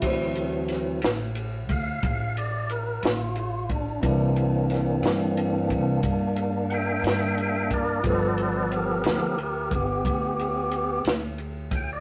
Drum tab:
CC |x-----------|------------|------------|
RD |xxxxxxxxxxxx|xxxxxxxxxxxx|xxxxxxxxxxxx|
SD |--oo-----o--|--oo-----o--|---o-----o--|
BD |o----oo----o|o----oo----o|o----oo----o|